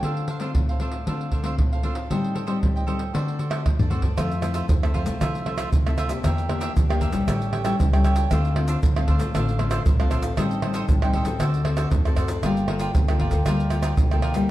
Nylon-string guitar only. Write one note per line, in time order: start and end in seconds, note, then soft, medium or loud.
0.00 0.52 D3 medium
0.00 0.24 A3 medium
0.00 0.24 C4 medium
0.00 0.24 F4 medium
0.40 0.76 A3 medium
0.40 0.76 C4 medium
0.40 0.76 F4 medium
0.55 1.04 A2 medium
0.80 0.96 A3 soft
0.80 0.96 C4 soft
0.80 0.96 F4 soft
1.06 1.56 D3 medium
1.06 1.42 A3 soft
1.06 1.42 C4 soft
1.06 1.42 F4 soft
1.43 1.79 A3 soft
1.43 1.79 C4 medium
1.43 1.80 F4 medium
1.58 2.08 A2 medium
1.84 2.06 A3 soft
1.84 2.06 C4 soft
1.84 2.07 F4 medium
2.11 2.60 A2 medium
2.11 2.46 G3 medium
2.11 2.46 C4 soft
2.11 2.46 D#4 medium
2.47 2.83 G3 medium
2.47 2.83 C4 medium
2.47 2.83 D#4 medium
2.62 3.12 A2 medium
2.87 3.03 G3 soft
2.87 3.03 C4 soft
2.87 3.03 D#4 medium
3.14 3.63 D3 medium
3.14 3.38 A3 soft
3.14 3.39 C4 soft
3.14 3.39 F#4 medium
3.51 3.87 A3 medium
3.51 3.87 C4 medium
3.51 3.87 F#4 medium
3.66 4.15 A2 medium
3.91 4.07 A3 medium
3.91 4.07 C4 medium
3.91 4.07 F#4 medium
4.17 4.67 F3 medium
4.17 4.33 A3 medium
4.17 4.33 C4 medium
4.17 4.33 E4 medium
4.42 4.78 A3 medium
4.42 4.78 C4 medium
4.42 4.78 E4 medium
4.69 5.19 C3 medium
4.83 5.05 A3 medium
4.83 5.05 C4 medium
4.83 5.05 E4 medium
5.06 5.16 A3 medium
5.06 5.16 C4 medium
5.06 5.16 E4 medium
5.21 5.70 F3 soft
5.21 5.36 A3 soft
5.21 5.37 C4 soft
5.21 5.37 E4 medium
5.46 5.71 A3 soft
5.46 5.71 C4 soft
5.46 5.71 E4 medium
5.73 6.22 C3 soft
5.87 6.08 A3 medium
5.87 6.08 C4 medium
5.87 6.08 E4 medium
6.09 6.45 A#3 medium
6.09 6.45 D4 medium
6.09 6.46 G4 medium
6.24 6.73 E3 medium
6.49 6.84 A#3 medium
6.49 6.84 D4 medium
6.49 6.85 G4 medium
6.76 7.25 E3 soft
6.90 7.11 A#3 medium
6.90 7.11 D4 medium
6.90 7.11 G4 medium
7.12 7.61 G3 medium
7.12 7.61 C#4 medium
7.12 7.62 E4 medium
7.28 7.77 A2 medium
7.64 7.87 G3 medium
7.64 7.88 C#4 medium
7.64 7.88 E4 medium
7.79 8.29 E3 medium
7.94 8.30 G3 medium
7.94 8.30 C#4 medium
7.94 8.30 E4 medium
8.32 8.81 D3 medium
8.32 8.53 A3 medium
8.32 8.53 C4 medium
8.32 8.54 F4 medium
8.56 8.81 A3 medium
8.56 8.81 C4 medium
8.56 8.81 F4 medium
8.83 9.32 A2 medium
8.97 9.18 A3 medium
8.97 9.18 C4 medium
8.97 9.18 F4 medium
9.20 9.29 A3 medium
9.20 9.30 C4 medium
9.20 9.30 F4 medium
9.35 9.84 D3 medium
9.35 9.50 A3 medium
9.35 9.50 C4 medium
9.35 9.50 F4 medium
9.59 9.84 A3 medium
9.59 9.84 C4 medium
9.59 9.85 F4 medium
9.86 10.35 A2 medium
10.00 10.34 A3 medium
10.00 10.34 C4 medium
10.00 10.34 F4 medium
10.38 10.87 A2 medium
10.38 10.59 G3 soft
10.38 10.60 C4 medium
10.38 10.60 D#4 medium
10.62 10.97 G3 medium
10.62 10.97 C4 medium
10.62 10.98 D#4 medium
10.89 11.38 A2 medium
11.03 11.24 G3 medium
11.03 11.24 C4 medium
11.03 11.25 D#4 medium
11.26 11.61 C4 medium
11.26 11.62 F#4 soft
11.26 11.62 A4 medium
11.41 11.90 D3 soft
11.65 12.00 C4 medium
11.65 12.01 F#4 soft
11.65 12.01 A4 medium
11.93 12.41 A2 soft
12.06 12.40 C4 medium
12.06 12.40 F#4 medium
12.06 12.41 A4 medium
12.44 12.93 G3 medium
12.44 12.66 A#3 medium
12.44 12.66 F4 medium
12.44 12.66 A4 medium
12.69 12.93 A#3 medium
12.69 12.93 F4 medium
12.69 12.94 A4 medium
12.96 13.44 D3 medium
13.09 13.30 A#3 medium
13.09 13.31 F4 medium
13.09 13.31 A4 medium
13.32 13.42 A#3 medium
13.32 13.42 F4 medium
13.32 13.42 A4 medium
13.47 13.96 G3 medium
13.47 13.62 A#3 medium
13.47 13.62 F4 soft
13.47 13.62 A4 medium
13.72 14.07 A#3 medium
13.72 14.07 F4 soft
13.72 14.07 A4 medium
13.99 14.47 D3 medium
14.12 14.34 A#3 medium
14.12 14.34 F4 medium
14.12 14.34 A4 medium
14.35 14.51 G3 medium
14.35 14.51 A#3 medium
14.35 14.51 E4 medium